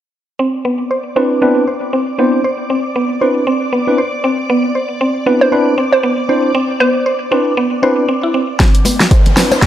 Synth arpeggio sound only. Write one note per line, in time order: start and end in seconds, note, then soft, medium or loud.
0.39 0.53 C4 loud
0.65 0.74 B3 loud
0.91 1.05 C5 medium
1.16 1.30 C4 loud
1.42 1.51 B3 loud
1.67 1.81 C5 medium
1.93 2.07 C4 loud
2.19 2.28 B3 loud
2.44 2.58 C5 medium
2.70 2.84 C4 loud
2.96 3.05 B3 loud
3.21 3.35 C5 medium
3.47 3.61 C4 loud
3.73 3.82 B3 loud
3.98 4.12 C5 medium
4.24 4.38 C4 loud
4.50 4.59 B3 loud
4.75 4.89 C5 medium
5.01 5.15 C4 loud
5.26 5.36 B3 loud
5.52 5.66 C5 medium
5.78 5.92 C4 loud
6.03 6.13 B3 loud
6.29 6.43 C5 medium
6.55 6.69 C4 loud
6.80 6.90 B3 loud
7.06 7.20 C5 medium
7.32 7.46 C4 loud
7.57 7.67 B3 loud
7.83 7.88 C5 loud
8.09 8.14 C4 medium
8.23 8.34 E4 medium
8.34 8.43 C4 medium
8.60 8.74 C4 loud
8.85 8.95 B3 medium
9.11 9.25 C5 medium
9.37 9.51 C4 loud
9.62 9.66 B3 loud